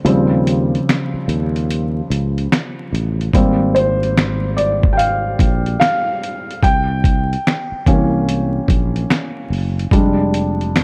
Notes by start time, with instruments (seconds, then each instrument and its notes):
0.05 fretless electric bass D#2, felt piano C#3 F3 G3 C4, closed hi-hat
0.47 closed hi-hat
0.75 closed hi-hat
0.89 finger snap, snare, closed hi-hat
1.14 muted fretless electric bass stroke
1.28 fretless electric bass D#2, closed hi-hat
1.56 closed hi-hat
1.71 closed hi-hat
2.10 fretless electric bass C#2, closed hi-hat
2.38 closed hi-hat
2.52 finger snap, snare, closed hi-hat
2.93 fretless electric bass A1, closed hi-hat
3.21 closed hi-hat
3.33 fretless electric bass G#1, felt piano G3 A#3 C4, kick, closed hi-hat
3.75 felt piano C5, closed hi-hat
4.03 closed hi-hat
4.17 finger snap, snare, closed hi-hat
4.57 felt piano D5, closed hi-hat
4.83 kick
4.93 felt piano G5
4.97 felt piano F5, closed hi-hat
5.39 fretless electric bass A#1, kick, closed hi-hat
5.66 closed hi-hat
5.80 felt piano F5, finger snap, snare, closed hi-hat
6.23 closed hi-hat
6.51 closed hi-hat
6.63 fretless electric bass C2, felt piano G5, kick, closed hi-hat
7.04 kick, closed hi-hat
7.33 closed hi-hat
7.47 finger snap, snare, closed hi-hat
7.72 muted fretless electric bass stroke
7.86 fretless electric bass C2, felt piano E3 A#3 C#4, kick, closed hi-hat
8.29 closed hi-hat
8.68 fretless electric bass A#1, kick, closed hi-hat
8.96 closed hi-hat
9.10 finger snap, snare, closed hi-hat
9.50 fretless electric bass F#1, open hi-hat
9.79 closed hi-hat
9.91 fretless electric bass F1, felt piano G3 G#3 D4, kick, closed hi-hat
10.34 closed hi-hat
10.61 closed hi-hat
10.76 finger snap, snare, closed hi-hat